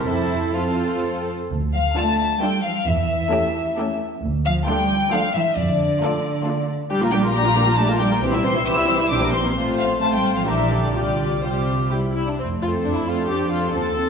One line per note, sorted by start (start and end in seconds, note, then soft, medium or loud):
0.05 1.29 F2 soft
0.05 0.52 C4 soft
0.05 0.53 E4 medium
0.05 0.53 A4 soft
0.05 1.24 A4 soft
0.05 0.54 C5 soft
0.54 1.28 C4 soft
0.54 1.27 F4 soft
0.54 1.28 A4 soft
0.54 1.29 C5 soft
1.51 1.87 D2 medium
1.74 1.83 F3 medium
1.74 1.95 F5 medium
1.96 2.30 A3 medium
1.96 2.41 A3 medium
1.96 2.30 D4 medium
1.96 2.31 F4 medium
1.96 2.31 A4 medium
1.96 2.42 A5 medium
2.41 2.64 G3 medium
2.41 2.74 A3 medium
2.41 2.75 D4 medium
2.41 2.76 F4 soft
2.41 2.76 A4 soft
2.41 2.64 G5 medium
2.64 2.87 F3 medium
2.64 2.86 F5 medium
2.86 3.22 E2 medium
2.86 4.00 E3 medium
2.86 4.00 E5 medium
3.31 3.65 A3 medium
3.31 3.65 C#4 medium
3.31 3.66 G4 medium
3.31 3.66 A4 medium
3.77 4.11 A3 medium
3.77 4.11 C#4 medium
3.77 4.11 G4 medium
3.77 4.11 A4 medium
4.23 4.58 D2 medium
4.45 4.66 F3 medium
4.45 4.53 F5 medium
4.67 5.11 G3 medium
4.67 5.01 A3 medium
4.67 5.01 D4 medium
4.67 5.00 F4 medium
4.67 5.00 A4 medium
4.67 5.11 G5 medium
5.12 5.20 F3 medium
5.12 5.45 A3 medium
5.12 5.45 D4 medium
5.12 5.45 F4 medium
5.12 5.45 A4 medium
5.12 5.35 F5 medium
5.34 5.43 E3 medium
5.34 5.56 E5 medium
5.56 5.91 F2 medium
5.56 6.66 D3 medium
5.56 6.68 D5 medium
6.01 6.34 A3 medium
6.01 6.34 D4 medium
6.01 6.35 F4 medium
6.01 6.35 A4 medium
6.45 6.79 A3 medium
6.45 6.79 D4 medium
6.45 6.79 F4 medium
6.45 6.79 A4 medium
6.90 8.18 A#1 medium
6.90 7.01 G3 medium
6.90 7.01 D4 medium
6.90 7.01 G4 medium
7.02 7.13 A#3 soft
7.02 7.13 F4 soft
7.02 7.13 A#4 soft
7.11 7.24 G3 soft
7.11 7.33 G3 medium
7.11 7.24 D4 soft
7.11 7.24 G4 medium
7.11 7.19 G5 medium
7.23 7.34 A#3 soft
7.23 7.35 F4 soft
7.23 7.34 A#4 soft
7.33 7.45 G3 soft
7.33 7.78 A#3 medium
7.33 7.46 D4 medium
7.33 7.45 G4 medium
7.33 7.76 A#5 medium
7.45 7.57 A#3 soft
7.45 7.56 F4 soft
7.45 7.57 F4 soft
7.45 7.56 A#4 soft
7.56 7.67 G3 soft
7.56 7.67 D4 soft
7.56 7.67 G4 soft
7.67 7.78 A#3 soft
7.67 7.78 F4 soft
7.67 7.79 F4 soft
7.67 7.78 A#4 soft
7.76 7.89 G3 soft
7.76 8.00 A3 medium
7.76 7.89 D4 soft
7.76 7.89 G4 soft
7.76 7.99 A5 medium
7.88 8.00 A#3 soft
7.88 8.00 F4 soft
7.88 8.01 F4 soft
7.88 8.00 A#4 soft
7.99 8.22 G3 medium
7.99 8.12 G3 soft
7.99 8.12 D4 soft
7.99 8.11 G4 soft
7.99 8.21 G5 medium
8.11 8.23 A#3 soft
8.11 8.23 F4 soft
8.11 8.22 A#4 soft
8.22 9.11 C2 medium
8.22 8.32 E3 soft
8.22 8.32 C4 medium
8.22 8.33 G4 soft
8.22 8.33 C5 soft
8.33 8.44 G3 soft
8.33 8.44 E4 soft
8.33 8.45 E5 soft
8.44 8.55 E3 soft
8.44 8.55 C4 soft
8.44 8.53 C4 medium
8.44 8.56 G4 soft
8.44 8.56 C5 soft
8.44 8.65 C6 medium
8.55 8.66 G3 soft
8.55 8.66 E4 soft
8.55 8.67 E4 soft
8.55 8.67 E5 soft
8.65 8.76 E3 soft
8.65 8.76 C4 soft
8.65 9.10 E4 medium
8.65 8.77 G4 soft
8.65 8.77 C5 soft
8.65 9.11 E6 medium
8.76 8.88 G3 soft
8.76 8.88 E4 soft
8.76 8.89 E4 soft
8.76 8.89 E5 soft
8.88 8.99 E3 soft
8.88 8.99 C4 soft
8.88 8.99 G4 soft
8.88 8.99 C5 soft
8.98 9.10 G3 soft
8.98 9.10 E4 soft
8.98 9.10 E5 soft
9.10 9.56 A#1 medium
9.10 9.21 E3 soft
9.10 9.21 C4 soft
9.10 9.33 D4 medium
9.10 9.21 G4 soft
9.10 9.21 C5 soft
9.10 9.33 D6 medium
9.22 9.33 G3 soft
9.22 9.33 A#3 soft
9.22 9.33 E4 soft
9.22 9.34 A#4 soft
9.32 9.44 E3 soft
9.32 9.44 C4 soft
9.32 9.56 C4 soft
9.32 9.44 G4 soft
9.32 9.45 C5 soft
9.32 9.55 C6 medium
9.44 9.56 G3 soft
9.44 9.56 A#3 soft
9.44 9.56 E4 soft
9.44 9.56 A#4 soft
9.56 10.43 A1 soft
9.56 9.98 A3 soft
9.56 9.98 C4 soft
9.56 9.98 F4 soft
9.56 9.98 C5 soft
9.78 9.99 F3 medium
9.78 9.87 F5 medium
10.00 10.12 A3 medium
10.00 10.46 A3 soft
10.00 10.46 C4 soft
10.00 10.46 F4 soft
10.00 10.46 C5 soft
10.00 10.12 A5 medium
10.13 10.36 G3 soft
10.13 10.36 G5 medium
10.36 10.41 F3 soft
10.36 10.41 F5 medium
10.46 10.95 A#1 soft
10.46 10.71 E3 soft
10.46 10.93 G3 soft
10.46 10.94 D4 soft
10.46 10.95 G4 soft
10.46 10.71 A#4 soft
10.46 10.70 E5 medium
10.70 10.94 D3 soft
10.70 10.95 A4 soft
10.70 10.93 D5 medium
10.94 12.16 C2 soft
10.94 11.43 D3 soft
10.94 11.42 G3 soft
10.94 11.43 F4 soft
10.94 11.43 G4 soft
10.94 11.42 D5 medium
11.43 11.91 C3 soft
11.43 11.90 G3 soft
11.43 11.91 F4 soft
11.43 11.89 G4 soft
11.43 11.91 C5 soft
11.91 12.18 G3 soft
11.91 12.18 E4 soft
11.91 11.99 G4 soft
12.15 12.27 E4 soft
12.28 12.40 D4 soft
12.39 12.80 F2 soft
12.39 13.26 A3 soft
12.39 12.47 C4 medium
12.62 13.06 C4 soft
12.62 12.70 F4 medium
12.62 13.07 A4 soft
12.62 13.06 C5 soft
12.85 13.24 F2 soft
12.85 12.96 D4 medium
12.97 13.08 E4 soft
13.07 13.51 C4 soft
13.07 13.30 F4 soft
13.07 13.51 A4 soft
13.07 13.51 C5 soft
13.29 13.69 F2 soft
13.29 13.73 D4 soft
13.29 13.52 G4 medium
13.52 13.74 C4 soft
13.52 13.74 F4 soft
13.52 13.74 A4 soft
13.52 13.72 C5 soft
13.73 14.09 D#2 soft
13.73 14.09 C4 soft
13.73 13.95 C4 soft
13.73 13.95 F4 soft
13.73 14.09 A4 medium
13.73 13.95 C5 soft
13.96 14.09 C4 soft
13.96 14.09 F4 soft
13.96 14.09 C5 soft